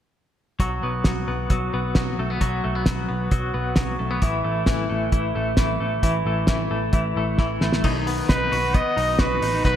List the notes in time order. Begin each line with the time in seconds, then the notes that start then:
0.60 B1 F#3, kick, closed hi-hat
0.83 B1 B3
1.04 B1 F#3, kick, snare, closed hi-hat
1.28 B1 B3
1.50 B1 F#3, kick, closed hi-hat
1.74 B1 B3
1.95 B1 F#3, kick, snare, closed hi-hat
2.19 B1 A3
2.30 B3
2.41 B1 F#3, kick, closed hi-hat
2.64 B1 A3
2.75 B3
2.86 B1 F#3, kick, snare, closed hi-hat
3.09 B1 B3
3.31 B1 F#3, kick, closed hi-hat
3.54 B1 B3
3.76 B1, kick, snare, closed hi-hat
3.99 B1 A3
4.11 B3
4.22 A1 E3, kick, closed hi-hat
4.44 A1 A3
4.66 A1 E3, kick, snare, closed hi-hat
4.89 A1 A3
5.12 A1 E3, kick, closed hi-hat
5.36 A1 A3
5.57 A1 E3, kick, snare, closed hi-hat
5.80 A1 A3
6.03 A1 E3, kick, closed hi-hat
6.25 A1 A3
6.47 A1 E3, kick, snare, closed hi-hat
6.71 A1 A3
6.93 A1 E3, kick, closed hi-hat
7.16 A1 A3
7.38 A1 E3, kick, snare
7.61 A1 A3, snare
7.73 snare
7.84 B1 D#3, kick, crash
8.07 B3, open hi-hat
8.29 B1 D#4 B4, kick, snare, closed hi-hat
8.52 B1 F#4, open hi-hat
8.74 B3 D#5, kick, closed hi-hat
8.97 B1 D#4, open hi-hat
9.19 B1 F#4 B4, kick, snare, closed hi-hat
9.42 A1 D#4, open hi-hat
9.65 B1 D#3 B4, kick, closed hi-hat